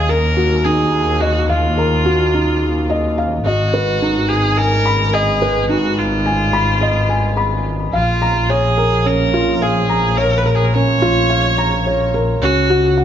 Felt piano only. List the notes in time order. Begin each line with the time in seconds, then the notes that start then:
Already playing: D#4 D#5 F5
0.09 A#4
0.37 F#4
0.65 D#4
1.21 D#5
1.50 F5
1.77 A#4
2.05 F#4
2.34 D#4
2.90 D#5
3.18 F5
3.46 D#5
3.74 B4
4.02 D#4
4.58 G#5
4.86 B5
5.14 D#5
5.42 B4
5.69 D#4
6.26 G#5
6.53 B5
6.81 D#5
7.09 G#5
7.37 B5
7.93 F5
8.22 A#5
8.49 C#5
8.77 A#4
9.05 C#4
9.34 F4
9.62 F5
9.89 A#5
10.18 C#5
10.46 A#4
10.74 C#4
11.02 F4
11.30 F5
11.58 A#5
11.86 C#5
12.14 A#4
12.42 C#4
12.70 F#4
12.97 F#5